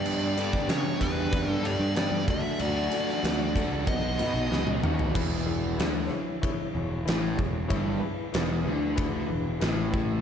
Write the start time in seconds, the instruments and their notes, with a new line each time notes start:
Already playing: picked electric bass G2, reed electric piano D4 G4 B4, lead electric guitar D5
0.05 overdriven electric guitar G2 D3 G3 B3 D4 G4, crash
0.37 overdriven electric guitar G2 D3 G3 B3 D4 G4, reed electric piano D4 G4 A4, ride
0.53 kick, snare
0.68 overdriven electric guitar G2 D3 G3 B3 D4 G4, picked electric bass C#3, reed electric piano D4 G4 B4, lead electric guitar C#5, snare, ride
1.00 picked electric bass E2, overdriven electric guitar G2 D3 G3 B3 D4 G4, reed electric piano D4 G4 B4, lead electric guitar B4, kick, ride
1.31 overdriven electric guitar G2 D3 G3 B3 D4 G4, reed electric piano D4 G4 B4, kick, ride
1.48 picked electric bass G2, lead electric guitar A4
1.63 overdriven electric guitar G2 D3 G3 B3 D4 G4, reed electric piano D4 G4 A4, lead electric guitar D5, ride
1.80 picked electric bass G2
1.96 overdriven electric guitar G2 D3 G3 B3 D4 G4, reed electric piano D4 G4 B4, snare, ride
2.11 picked electric bass G2
2.28 picked electric bass D2, overdriven electric guitar D3 F#3 A3 D4 F#4, reed electric piano D4 F#4 A4, lead electric guitar E5, kick, ride
2.59 picked electric bass D2, overdriven electric guitar D3 F#3 A3 D4 F#4, lead electric guitar D5, ride
2.91 overdriven electric guitar D3 F#3 A3 D4 F#4, reed electric piano D4 F#4 A4, ride
3.09 snare
3.23 picked electric bass D2, overdriven electric guitar D3 F#3 A3 D4 F#4, reed electric piano D4 F#4 G#4, snare, ride
3.56 overdriven electric guitar D3 F#3 A3 D4 F#4, reed electric piano D4 F#4 A4, kick, ride
3.72 picked electric bass C#2
3.87 picked electric bass B1, overdriven electric guitar B2 F#3 B3 D#4 F#4, reed electric piano D#4 F#4 B4, lead electric guitar D#5, kick, ride
4.19 picked electric bass B2, overdriven electric guitar B2 F#3 B3 D#4 F#4, reed electric piano D#4 F#4 B4, ride
4.34 picked electric bass B1
4.51 picked electric bass C#2, overdriven electric guitar B2 F#3 B3 D#4 F#4, reed electric piano D#4 F#4 B4, snare
4.67 high tom
4.83 picked electric bass D#2, overdriven electric guitar B2 F#3 B3 D#4 F#4, reed electric piano D#4 F#4 B4, mid tom
4.99 floor tom
5.15 picked electric bass E1, overdriven electric guitar E2, reed electric piano E4 G#4 B4, kick, crash
5.46 reed electric piano E4 G#4 B4
5.78 picked electric bass D2, overdriven electric guitar D3, reed electric piano E4 G#4 B4, snare, ride bell
6.10 reed electric piano E4 G#4 C#5, muted picked electric bass stroke, muted overdriven electric guitar stroke
6.42 reed electric piano E4 G#4 C#5, kick, ride bell
6.74 picked electric bass E1, overdriven electric guitar E2, reed electric piano E4 G#4 C#5
7.05 picked electric bass A1, overdriven electric guitar A2, reed electric piano E4 G#4 B4, snare, ride bell
7.38 picked electric bass E1, overdriven electric guitar E2, reed electric piano E4 G#4 C#5, kick
7.68 picked electric bass G1, reed electric piano E4 G#4 C#5, kick, ride bell
7.72 overdriven electric guitar G2
8.00 reed electric piano E4 G#4 B4, muted picked electric bass stroke, muted overdriven electric guitar stroke
8.32 picked electric bass E1, overdriven electric guitar E2, reed electric piano E4 G#4 B4, snare, ride bell
8.64 picked electric bass D2, overdriven electric guitar D3, reed electric piano E4 G#4 B4
8.96 reed electric piano E4 G#4 B4, kick, ride bell
9.28 picked electric bass E1, overdriven electric guitar E2, reed electric piano E4 G#4 B4
9.60 picked electric bass A1, overdriven electric guitar A2, reed electric piano E4 G#4 B4, snare, ride bell
9.91 reed electric piano E4 G#4 B4, kick